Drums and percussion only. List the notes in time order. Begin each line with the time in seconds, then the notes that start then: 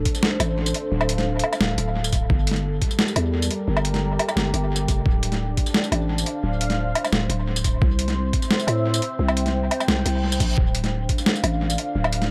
0.05 kick, closed hi-hat
0.15 tambourine
0.23 snare
0.40 closed hi-hat, tambourine, low woodblock
0.66 tambourine
0.74 closed hi-hat
1.01 low woodblock
1.09 closed hi-hat
1.18 snare, closed hi-hat
1.39 closed hi-hat
1.44 low woodblock
1.53 tambourine, low woodblock
1.61 snare
1.78 closed hi-hat
2.04 tambourine
2.13 kick, closed hi-hat, tambourine
2.30 kick
2.47 closed hi-hat
2.51 snare
2.56 closed hi-hat
2.82 kick, closed hi-hat
2.91 tambourine
2.99 snare
3.08 tambourine
3.16 closed hi-hat, low woodblock
3.42 tambourine
3.51 closed hi-hat
3.77 low woodblock
3.85 closed hi-hat
3.94 snare, closed hi-hat
4.19 closed hi-hat, low woodblock
4.29 tambourine, low woodblock
4.37 snare
4.54 closed hi-hat
4.76 tambourine
4.88 kick, closed hi-hat, tambourine
5.06 kick
5.23 closed hi-hat
5.32 snare, closed hi-hat
5.57 kick, closed hi-hat
5.66 tambourine
5.74 snare
5.84 tambourine
5.92 closed hi-hat, low woodblock
6.18 tambourine
6.26 closed hi-hat
6.61 closed hi-hat
6.70 snare, closed hi-hat
6.95 closed hi-hat, low woodblock
7.05 tambourine, low woodblock
7.13 snare
7.30 closed hi-hat
7.56 tambourine
7.64 kick, closed hi-hat, tambourine
7.82 kick
7.99 closed hi-hat
8.08 snare, closed hi-hat
8.33 kick, closed hi-hat
8.42 tambourine
8.51 snare
8.60 tambourine
8.68 closed hi-hat, low woodblock
8.94 tambourine
9.02 closed hi-hat
9.28 low woodblock
9.37 closed hi-hat
9.46 snare, closed hi-hat
9.71 closed hi-hat, low woodblock
9.80 tambourine, low woodblock
9.88 snare
10.06 closed hi-hat
10.32 tambourine
10.40 kick, closed hi-hat, tambourine
10.58 kick
10.75 closed hi-hat
10.84 snare, closed hi-hat
11.09 kick, closed hi-hat
11.18 tambourine
11.26 snare
11.36 tambourine
11.44 closed hi-hat, low woodblock
11.70 tambourine
11.78 closed hi-hat
12.04 low woodblock
12.13 closed hi-hat
12.22 snare, closed hi-hat